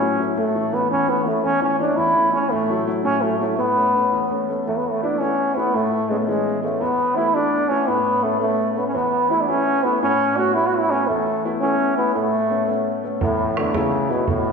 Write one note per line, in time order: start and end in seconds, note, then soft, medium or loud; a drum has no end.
0.00 0.18 A2 medium
0.00 0.17 F#3 soft
0.00 0.18 A3 soft
0.00 0.24 C#4 medium
0.00 0.18 E4 soft
0.19 0.33 F#3 soft
0.19 0.33 A3 soft
0.19 0.34 E4 soft
0.37 0.72 A2 medium
0.37 0.75 A3 medium
0.55 0.71 E3 soft
0.55 0.71 A3 soft
0.55 0.72 C#4 soft
0.73 1.01 E3 soft
0.73 1.01 A3 soft
0.73 0.91 B3 medium
0.73 1.02 C#4 medium
0.91 1.25 E2 medium
0.91 1.11 C#4 medium
1.08 1.24 E3 soft
1.08 1.24 A3 soft
1.08 1.28 B3 medium
1.08 1.25 C#4 medium
1.26 1.55 E3 soft
1.26 1.55 A3 soft
1.26 1.46 A3 medium
1.26 1.55 C#4 medium
1.44 1.79 E2 medium
1.44 1.62 C#4 loud
1.62 1.78 E3 soft
1.62 1.79 A3 soft
1.62 1.79 C#4 medium
1.80 2.09 E3 soft
1.80 2.09 A3 soft
1.80 2.09 C#4 medium
1.80 1.98 D4 medium
1.96 2.32 E2 medium
1.96 2.32 E4 loud
2.16 2.32 E3 soft
2.16 2.32 A3 soft
2.16 2.33 C#4 medium
2.33 2.48 E3 soft
2.33 2.48 A3 soft
2.33 2.53 C#4 medium
2.33 2.49 C#4 medium
2.51 2.87 A2 medium
2.51 2.87 A3 loud
2.69 2.86 F#3 soft
2.69 2.86 A3 soft
2.69 2.86 E4 medium
2.87 3.16 F#3 soft
2.87 3.16 A3 soft
2.87 3.16 E4 medium
3.04 3.40 A2 medium
3.04 3.23 C#4 loud
3.22 3.39 F#3 soft
3.22 3.39 A3 medium
3.22 3.39 A3 soft
3.22 3.40 E4 medium
3.40 3.55 F#3 soft
3.40 3.57 A3 medium
3.40 3.55 A3 soft
3.40 3.56 E4 medium
3.58 3.94 A2 medium
3.58 4.26 B3 medium
3.77 3.93 A3 soft
3.77 3.93 B3 soft
3.77 3.94 C#4 medium
3.95 4.23 A3 soft
3.95 4.23 B3 soft
3.95 4.24 C#4 medium
4.13 4.47 E2 medium
4.30 4.47 A3 soft
4.30 4.48 B3 soft
4.30 4.48 C#4 medium
4.49 4.63 A3 soft
4.49 4.63 B3 soft
4.49 4.64 C#4 soft
4.67 5.71 E2 medium
4.67 4.79 A3 medium
4.78 4.92 B3 medium
4.90 5.02 A3 medium
5.03 5.18 A3 soft
5.03 5.19 B3 soft
5.03 5.22 D4 medium
5.03 5.19 E4 medium
5.20 5.55 A3 soft
5.20 5.55 B3 soft
5.20 5.58 C#4 medium
5.20 5.55 E4 medium
5.57 5.73 A3 soft
5.57 5.76 B3 medium
5.57 5.74 B3 soft
5.57 5.74 E4 soft
5.74 6.78 A2 medium
5.74 6.11 A3 medium
6.09 6.19 G#3 medium
6.09 6.44 A3 soft
6.09 6.27 B3 soft
6.09 6.27 C#4 medium
6.20 6.29 A3 medium
6.28 6.62 E3 soft
6.28 6.63 G#3 medium
6.28 6.62 B3 soft
6.28 6.63 C#4 medium
6.63 6.82 A3 medium
6.63 6.81 A3 soft
6.63 6.81 B3 soft
6.63 6.81 C#4 medium
6.81 7.85 E2 medium
6.81 7.17 B3 medium
7.16 7.33 A3 medium
7.16 7.33 B3 soft
7.16 7.36 E4 medium
7.16 7.34 E4 medium
7.34 7.68 A3 soft
7.34 7.69 B3 soft
7.34 7.70 D4 loud
7.34 7.69 E4 medium
7.69 7.87 A3 soft
7.69 7.87 B3 soft
7.69 7.88 C#4 medium
7.69 7.88 E4 soft
7.87 8.91 A2 medium
7.87 8.25 B3 loud
8.23 8.40 A3 medium
8.23 8.40 A3 soft
8.23 8.40 B3 soft
8.23 8.40 C#4 medium
8.41 8.72 A3 medium
8.41 8.75 A3 soft
8.41 8.76 B3 soft
8.41 8.76 C#4 medium
8.72 8.78 A3 medium
8.77 8.94 A3 soft
8.77 8.87 B3 medium
8.77 8.94 B3 soft
8.77 8.95 C#4 soft
8.87 8.97 C#4 medium
8.94 9.98 E2 medium
8.94 9.32 B3 medium
9.30 9.47 A3 soft
9.30 9.47 B3 soft
9.30 9.43 E4 medium
9.30 9.47 E4 medium
9.41 9.50 D4 medium
9.48 9.83 A3 soft
9.48 9.83 B3 soft
9.48 9.85 C#4 loud
9.48 9.83 E4 medium
9.83 10.01 A3 soft
9.83 10.01 B3 medium
9.83 10.01 B3 soft
9.83 10.02 E4 soft
10.02 11.05 A2 medium
10.02 10.38 C#4 loud
10.37 10.54 A3 medium
10.37 10.54 B3 soft
10.37 10.54 C#4 medium
10.37 10.56 F#4 medium
10.54 10.89 A3 soft
10.54 10.90 B3 soft
10.54 10.90 C#4 medium
10.54 10.68 E4 loud
10.67 10.79 F#4 medium
10.78 10.92 E4 loud
10.90 11.08 A3 soft
10.90 11.08 B3 soft
10.90 11.10 C#4 medium
10.90 11.08 C#4 soft
11.08 12.12 E2 medium
11.08 11.44 A3 medium
11.45 11.61 A3 soft
11.45 11.61 B3 soft
11.45 11.61 E4 medium
11.61 11.96 A3 soft
11.61 11.96 B3 soft
11.61 11.94 C#4 loud
11.61 11.97 E4 medium
11.97 12.14 A3 soft
11.97 12.13 B3 medium
11.97 12.15 B3 soft
11.97 12.15 E4 soft
12.15 13.18 A2 medium
12.15 13.00 A3 medium
12.50 12.66 A3 soft
12.50 12.67 B3 soft
12.50 12.68 C#4 medium
12.68 13.02 A3 soft
12.68 13.02 B3 soft
12.68 13.03 C#4 medium
13.04 13.21 A3 soft
13.04 13.21 B3 soft
13.04 13.21 C#4 soft
13.21 14.25 E2 medium
13.21 13.60 A2 medium
13.21 bodhran medium
13.39 bodhran soft
13.57 13.77 D3 medium
13.57 13.73 A3 soft
13.57 13.74 B3 soft
13.57 13.74 E4 medium
13.57 bodhran medium
13.74 14.12 C#3 medium
13.74 14.08 A3 soft
13.74 14.09 B3 soft
13.74 14.09 E4 medium
13.74 bodhran medium
14.10 14.28 B2 medium
14.10 14.27 A3 soft
14.10 14.27 B3 soft
14.10 14.27 E4 medium
14.28 14.52 A2 medium
14.28 14.52 B2 medium
14.28 bodhran medium
14.46 bodhran soft